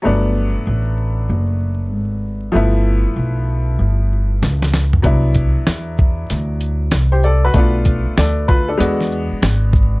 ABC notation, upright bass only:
X:1
M:4/4
L:1/16
Q:"Swing 16ths" 1/4=96
K:G
V:1 name="Upright bass" clef=bass
G,,,3 z A,,,4 F,,,4 _A,,,4 | G,,,3 z B,,,4 G,,,4 ^C,,4 | C,,3 z E,,4 D,,4 C,,4 | B,,,3 z D,,4 E,,3 z ^G,,,4 |]